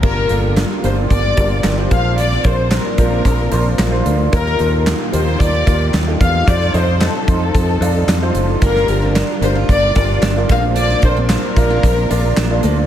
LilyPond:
<<
  \new Staff \with { instrumentName = "Violin section" } { \time 4/4 \key bes \major \tempo 4 = 112 bes'4 r8 c''8 d''4 r8 f''8 | d''8 c''8 bes'2~ bes'8 r8 | bes'4 r8 c''8 d''4 r8 f''8 | d''8 c''8 a'2~ a'8 r8 |
bes'4 r8 c''8 d''4 r8 f''8 | d''8 c''8 bes'2~ bes'8 r8 | }
  \new Staff \with { instrumentName = "Upright piano" } { \time 4/4 \key bes \major <d' f' g' bes'>8 <d' f' g' a'>8. r16 <d' f' g' bes'>8. r16 <d' f' g' bes'>8. <d' f' g' c''>16 <d' f' bes' c''>8~ | <d' f' bes' c''>16 r16 <d' f' bes' c''>8. r16 <d' f' bes' c''>8. r16 <d' f' bes' c''>8. <d' f' bes' c''>8. | <ees' f' g' bes'>8 <ees' f' g' a'>8. r16 <ees' f' g' bes'>8. r16 <ees' f' g' bes'>8. <ees' f' g' a'>8. | <ees' f' a' c''>8 <ees' f' a' ees''>8. r16 <ees' f' a' c''>8. r16 <ees' f' a' d''>8. <ees' f' a' c''>8. |
<d' f' g' bes'>8 <d' f' g' bes'>8. r16 <d' f' g' bes'>8. r16 <d' f' g' bes'>8. <d' f' g' bes'>16 <d' f' bes' c''>8~ | <d' f' bes' c''>16 r16 <d' f' bes' c''>8. r16 <d' f' bes' c''>8. r16 <d' f' bes' d''>8. <d' f' bes' d''>8. | }
  \new Staff \with { instrumentName = "Upright piano" } { \clef bass \time 4/4 \key bes \major <g, d>4. r2 <bes, f>8~ | <bes, f>4 r2. | bes,4. r2 r8 | c4. r2 r8 |
<g, d>4. r2 <bes, f>8~ | <bes, f>4 r2. | }
  \new Staff \with { instrumentName = "Steel-string acoustic guitar" } { \time 4/4 \key bes \major r1 | r1 | r1 | r1 |
bes8 r16 c'16 d'16 r8 f'16 r8 f'8 d'16 r16 bes16 r16 | bes8 r16 c'16 d'16 r8 f'16 r8 f'8 d'16 r16 bes16 r16 | }
  \new Staff \with { instrumentName = "String section" } { \time 4/4 \key bes \major <g bes d' f'>2.~ <g bes d' f'>8 <bes c'>8~ | <bes c'>1 | <ees bes f' g'>1 | <f c' ees' a'>1 |
<g d' f' bes'>2.~ <g d' f' bes'>8 <bes c'>8~ | <bes c'>1 | }
  \new Staff \with { instrumentName = "Fingered electric bass" } { \clef bass \time 4/4 \key bes \major g,,8 g,,8. r16 g,,8 g,,8 g,,8 g,,8 bes,,8~ | bes,,8 bes,,8. r16 bes,,8 bes,,8 bes,,8 bes,,8 d,8 | ees,8 ees,8. r16 ees,8 ees,8 ees,8 ees,8 e,8 | f,8 f,8. r16 f,8 f,8 f,8 f,8 ges,,8 |
g,,8 g,,8. r16 g,,8 g,,8 g,,8 g,,8 bes,,8~ | bes,,8 bes,,8. r16 bes,,8 bes,,8 bes,,8 bes,,8 d,8 | }
  \new DrumStaff \with { instrumentName = "Drums" } \drummode { \time 4/4 <cymc bd>8 hh8 <hc hh sn>8 hh8 <hh bd>8 <hh bd>8 <hc hh sn>8 <hh bd>8 | hh16 sn16 <hh bd>8 <hc hh sn>8 <hh bd>8 <hh bd>8 hh8 <hc hh sn>8 hh8 | <hh bd>16 sn16 hh8 <hc hh sn>8 hh8 <hh bd>8 <hh bd>8 <hc hh sn>8 <hh bd>8 | <hh bd>16 sn16 hh8 <hc hh sn>8 <hh bd>8 <hh bd>8 hh8 <hc hh sn>8 hh8 |
<hh bd>16 sn16 hh8 <hc hh sn>8 hh8 <hh bd>8 <hh bd>8 <hc hh sn>8 <hh bd>8 | hh16 sn16 <hh bd>8 <hc hh sn>8 <hh bd>8 <hh bd>8 hh8 <hc hh sn>8 hh8 | }
>>